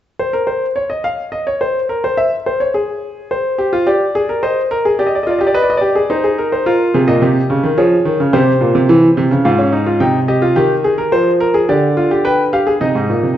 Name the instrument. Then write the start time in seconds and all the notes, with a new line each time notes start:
grand piano
0.19 C5
0.33 A#4
0.47 C5
0.76 C#5
0.90 D#5
1.04 F5
1.32 D#5
1.47 C#5
1.61 C5
1.89 A#4
2.04 C5
2.17 E5
2.46 C5
2.60 C#5
2.74 G#4
3.31 C5
3.58 G4
3.73 F4
3.87 G4 D5
4.15 G#4
4.29 A#4
4.43 C5 D#5
4.71 A#4
4.85 G#4
4.99 G4 D5
5.07 D#5
5.15 D5
5.23 F4 D#5
5.30 D5
5.39 G4 D#5
5.47 D5
5.54 B4 D#5
5.62 D5
5.70 D#5
5.77 D5
5.81 G4
5.95 G#4
6.10 D#4 C5
6.24 G#4
6.38 A#4
6.52 C5
6.66 F4 A#4
6.94 C3 G#4
7.07 A#2 D#5
7.22 C3 G4
7.50 C#3
7.63 D#3
7.78 F3 G#4 C#5
8.05 D#3
8.20 C#3
8.33 C3 G4 C5
8.61 A#2
8.75 C3
8.89 E3
9.17 C3
9.31 C#3
9.45 G#2 F4 F5
9.59 C#4
9.72 D#4
9.86 F4
10.00 C3 D#4 G5
10.28 G4 D#5
10.42 F4
10.56 D#3 G4
10.84 G#4
10.98 A#4
11.12 F3 C5
11.40 A#4
11.54 G#4
11.69 D3 G4 D5
11.97 F4
12.11 G4
12.25 B4 G5
12.53 G4 F5
12.67 G#4
12.81 C3 D#4 D#5
12.95 G#2
13.10 A#2
13.23 C3